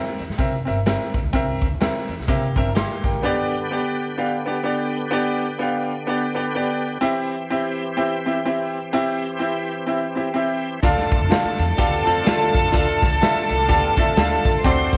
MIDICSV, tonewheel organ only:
0, 0, Header, 1, 2, 480
1, 0, Start_track
1, 0, Tempo, 475059
1, 1352, Time_signature, 4, 2, 24, 8
1, 15126, End_track
2, 0, Start_track
2, 0, Title_t, "Tonewheel organ"
2, 0, Program_c, 0, 16
2, 3252, Note_on_c, 0, 67, 76
2, 3254, Note_on_c, 0, 59, 67
2, 3258, Note_on_c, 0, 50, 69
2, 7055, Note_off_c, 0, 59, 0
2, 7057, Note_off_c, 0, 50, 0
2, 7115, Note_on_c, 0, 60, 65
2, 7117, Note_on_c, 0, 52, 72
2, 10894, Note_off_c, 0, 67, 0
2, 10912, Note_off_c, 0, 60, 0
2, 10913, Note_off_c, 0, 52, 0
2, 10946, Note_on_c, 0, 50, 67
2, 10947, Note_on_c, 0, 57, 62
2, 10951, Note_on_c, 0, 65, 76
2, 14757, Note_off_c, 0, 57, 0
2, 14759, Note_off_c, 0, 65, 0
2, 14792, Note_on_c, 0, 66, 78
2, 14794, Note_on_c, 0, 60, 66
2, 15126, Note_off_c, 0, 50, 0
2, 15126, Note_off_c, 0, 60, 0
2, 15126, Note_off_c, 0, 66, 0
2, 15126, End_track
0, 0, End_of_file